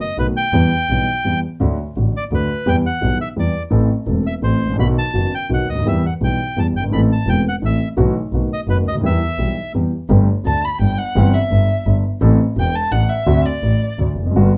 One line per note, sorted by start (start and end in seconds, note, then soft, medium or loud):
0.01 0.17 D#5 medium
0.17 0.33 B1 soft
0.17 0.33 B2 soft
0.17 0.33 D#3 soft
0.17 0.33 A3 soft
0.17 0.33 B3 soft
0.17 0.33 F#4 soft
0.17 0.27 B4 medium
0.37 1.40 G5 medium
0.53 0.68 E2 medium
0.53 0.69 E3 medium
0.53 0.68 G3 soft
0.53 0.69 B3 soft
0.53 0.69 G4 medium
0.89 1.04 B1 soft
0.89 1.05 B1 soft
0.89 1.05 B2 soft
0.89 1.04 E3 soft
0.89 1.05 G3 soft
0.89 1.05 B3 soft
0.89 1.05 G4 soft
1.24 1.40 E2 soft
1.24 1.40 E3 soft
1.24 1.40 G3 soft
1.24 1.40 B3 soft
1.24 1.40 G4 soft
1.60 1.76 D2 medium
1.60 1.76 D3 medium
1.60 1.76 F#3 soft
1.60 1.76 A3 soft
1.60 1.76 F#4 medium
1.96 2.12 A1 soft
1.96 2.12 A2 soft
1.96 2.12 D3 soft
1.96 2.12 F#3 soft
1.96 2.12 A3 soft
1.96 2.12 F#4 soft
2.17 2.24 D5 medium
2.31 2.47 D2 soft
2.31 2.47 D3 soft
2.31 2.47 F#3 soft
2.31 2.47 A3 soft
2.31 2.47 F#4 soft
2.31 2.70 B4 soft
2.66 2.82 E2 medium
2.66 2.82 E3 medium
2.66 2.81 G3 soft
2.66 2.82 B3 medium
2.66 2.82 G4 medium
2.66 2.76 G5 medium
2.86 3.18 F#5 medium
3.01 3.17 B1 soft
3.01 3.17 B2 soft
3.01 3.16 E3 soft
3.01 3.16 G3 soft
3.01 3.17 B3 soft
3.01 3.17 G4 soft
3.21 3.29 E5 medium
3.36 3.51 E2 soft
3.36 3.52 E2 soft
3.36 3.51 E3 soft
3.36 3.52 G3 soft
3.36 3.52 B3 soft
3.36 3.52 G4 soft
3.36 3.63 D5 medium
3.70 3.86 A1 medium
3.70 3.87 A1 medium
3.70 3.86 A2 medium
3.70 3.86 E3 medium
3.70 3.86 A3 medium
3.70 3.86 C4 medium
3.70 3.86 A4 medium
4.06 4.22 E1 soft
4.06 4.22 E2 soft
4.06 4.22 E3 soft
4.06 4.22 A3 soft
4.06 4.22 C4 soft
4.06 4.22 A4 soft
4.27 4.34 E5 medium
4.42 4.57 A1 soft
4.42 4.58 A1 soft
4.42 4.57 A2 soft
4.42 4.58 E3 soft
4.42 4.57 A3 soft
4.42 4.58 C4 soft
4.42 4.58 A4 soft
4.42 4.76 C5 medium
4.60 4.78 A1 soft
4.65 4.70 G#1 soft
4.70 4.74 A1 soft
4.70 4.78 A#1 medium
4.78 4.93 B1 medium
4.78 4.94 B1 medium
4.78 4.94 B2 medium
4.78 4.94 D#3 medium
4.78 4.94 F#3 medium
4.78 4.94 B3 soft
4.78 4.94 F#4 medium
4.78 4.88 B5 medium
4.98 5.34 A5 medium
5.14 5.29 F#1 soft
5.14 5.29 F#2 soft
5.14 5.29 D#3 soft
5.14 5.29 F#3 soft
5.14 5.29 B3 soft
5.14 5.30 F#4 soft
5.35 5.50 G5 medium
5.49 5.65 B1 soft
5.49 5.65 B2 soft
5.49 5.65 D#3 soft
5.49 5.65 F#3 soft
5.49 5.65 B3 soft
5.49 5.65 F#4 soft
5.54 5.69 F#5 medium
5.68 5.77 C#2 soft
5.68 5.85 D2 soft
5.68 5.87 D#5 medium
5.76 5.81 D2 soft
5.76 5.85 D#2 soft
5.86 6.01 E2 medium
5.86 6.01 E3 medium
5.86 6.01 G3 soft
5.86 6.01 B3 soft
5.86 6.01 G4 medium
5.86 6.05 E5 medium
6.06 6.14 F#5 medium
6.21 6.36 B1 soft
6.21 6.36 B2 soft
6.21 6.36 E3 soft
6.21 6.36 G3 soft
6.21 6.36 B3 soft
6.21 6.36 G4 soft
6.21 6.59 G5 medium
6.57 6.72 E2 soft
6.57 6.72 E3 soft
6.57 6.72 G3 soft
6.57 6.72 B3 soft
6.57 6.72 G4 soft
6.57 6.67 A5 medium
6.75 6.92 G1 soft
6.75 6.84 G5 medium
6.79 6.83 F#1 soft
6.79 6.88 G1 soft
6.89 6.93 G#1 soft
6.89 7.07 A1 medium
6.89 7.07 A2 medium
6.89 7.07 E3 medium
6.89 7.07 A3 soft
6.89 7.07 C4 soft
6.93 7.07 A4 medium
6.93 7.01 B5 medium
7.12 7.29 A5 medium
7.27 7.42 E1 soft
7.27 7.42 E2 soft
7.27 7.42 E3 soft
7.27 7.42 A3 soft
7.27 7.42 C4 soft
7.27 7.42 A4 soft
7.27 7.45 G5 medium
7.49 7.56 F#5 medium
7.62 7.77 A1 soft
7.62 7.77 A1 medium
7.62 7.77 A2 soft
7.62 7.77 E3 soft
7.62 7.77 A3 soft
7.62 7.77 C4 soft
7.62 7.77 A4 soft
7.62 7.88 E5 medium
7.97 8.12 B1 medium
7.97 8.12 B2 medium
7.97 8.12 E3 medium
7.97 8.12 A3 medium
7.97 8.12 B3 medium
7.97 8.12 F#4 medium
8.33 8.48 B1 medium
8.33 8.48 B1 soft
8.33 8.48 B2 soft
8.33 8.48 D#3 soft
8.33 8.48 A3 soft
8.33 8.48 B3 soft
8.33 8.48 F#4 soft
8.53 8.61 D#5 medium
8.67 8.83 F#1 soft
8.67 8.83 F#2 soft
8.67 8.83 D#3 soft
8.67 8.83 A3 soft
8.67 8.83 B3 soft
8.67 8.83 F#4 soft
8.67 8.77 B4 medium
8.86 9.03 D2 soft
8.86 8.95 D#5 medium
8.91 8.95 C#2 soft
8.95 8.99 D2 soft
9.00 9.04 D#2 medium
9.00 9.18 E2 medium
9.00 9.18 E3 medium
9.00 9.18 G3 soft
9.00 9.18 B3 soft
9.04 9.19 E2 medium
9.04 9.19 G4 medium
9.04 9.72 E5 medium
9.39 9.54 B1 soft
9.39 9.54 B2 soft
9.39 9.54 E3 soft
9.39 9.54 G3 soft
9.39 9.54 B3 soft
9.39 9.54 G4 soft
9.74 9.90 E2 soft
9.74 9.90 E3 soft
9.74 9.90 G3 soft
9.74 9.90 B3 soft
9.74 9.90 G4 soft
10.09 10.25 G1 medium
10.09 10.25 G2 medium
10.09 10.25 D3 medium
10.09 10.25 A3 medium
10.09 10.26 B3 medium
10.09 10.25 G4 medium
10.45 10.61 D2 medium
10.45 10.61 D2 soft
10.45 10.61 D3 soft
10.45 10.66 A5 medium
10.65 10.80 B5 medium
10.80 10.96 G1 medium
10.80 10.96 G1 soft
10.80 10.96 G2 soft
10.80 10.99 G5 medium
10.98 11.35 F#5 medium
11.15 11.31 G1 medium
11.15 11.32 G1 medium
11.15 11.31 G2 medium
11.15 11.31 E3 medium
11.15 11.31 G3 medium
11.15 11.31 C4 medium
11.15 11.31 G4 medium
11.34 11.87 E5 medium
11.50 11.66 G1 soft
11.50 11.67 G1 medium
11.50 11.66 G2 soft
11.86 12.01 G1 medium
11.86 12.02 G1 medium
11.86 12.01 G2 soft
12.21 12.36 A1 medium
12.21 12.36 A2 medium
12.21 12.36 E3 medium
12.21 12.36 A3 medium
12.21 12.36 C4 medium
12.21 12.37 A4 medium
12.56 12.71 E1 soft
12.56 12.72 E1 medium
12.56 12.71 E2 soft
12.56 12.77 G5 medium
12.75 12.94 A5 medium
12.92 13.07 A1 medium
12.92 13.07 A2 soft
12.92 13.03 F#5 medium
13.03 13.11 F#5 medium
13.10 13.47 E5 medium
13.26 13.42 D2 medium
13.26 13.42 D3 medium
13.26 13.42 A3 medium
13.26 13.42 C4 medium
13.26 13.42 F#4 medium
13.46 13.99 D5 medium
13.63 13.78 A1 soft
13.63 13.78 A1 medium
13.63 13.78 A2 soft
13.99 14.14 D2 soft
13.99 14.14 D2 medium
13.99 14.14 D3 soft
14.16 14.34 F1 soft
14.22 14.26 E2 soft
14.22 14.30 F2 soft
14.31 14.49 G1 medium
14.31 14.35 F#2 medium
14.36 14.50 G1 medium
14.36 14.50 G2 medium
14.36 14.50 D3 medium
14.36 14.50 G3 medium
14.36 14.50 B3 medium
14.36 14.50 F#4 medium